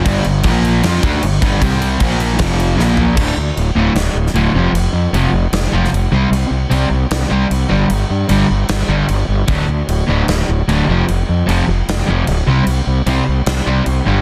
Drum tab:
CC |x-x-x-x-x-x-x-x-|x-x-x-x-x-x-----|x---x---x---x---|x---x---x---x---|
SD |--------o-------|--------o---o---|--------o--o----|--------o--o----|
FT |----------------|--------------o-|----------------|----------------|
BD |o---o-----o---o-|o---o---o-------|o---------------|----------------|

CC |x---x---x---x---|x---x---x---x---|x---x---x---x---|x---x---x---x---|
SD |--------o-------|--------o-------|--------o-------|--------o-------|
FT |----------------|----------------|----------------|----------------|
BD |----------------|----------------|o---------------|----------------|

CC |x---x---x---x---|
SD |--------o-------|
FT |----------------|
BD |----------------|